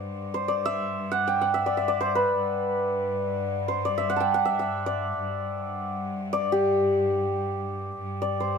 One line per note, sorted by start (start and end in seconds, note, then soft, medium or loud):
0.00 2.32 G2 medium
0.00 0.34 C5 medium
0.00 0.48 D5 medium
0.34 2.00 C5 medium
0.48 1.66 D5 medium
0.65 1.54 E5 medium
1.12 1.34 F#5 medium
1.28 1.47 G5 medium
1.41 3.56 F#5 medium
1.54 1.77 E5 medium
1.66 1.88 D5 medium
1.77 3.97 E5 medium
1.88 3.85 D5 medium
2.01 2.21 C5 medium
2.15 3.74 B4 medium
2.33 5.16 G2 medium
3.68 6.32 C5 medium
3.85 4.86 D5 medium
3.98 4.45 E5 medium
4.10 4.26 F#5 medium
4.16 6.09 A5 medium
4.20 4.40 G5 medium
4.34 6.49 F#5 medium
4.45 4.59 E5 medium
4.59 6.89 E5 medium
4.86 6.32 D5 medium
5.18 7.97 G2 medium
6.33 8.21 D5 medium
6.52 8.58 G4 medium
7.98 8.58 G2 medium
8.22 8.58 D5 medium
8.40 8.58 C5 medium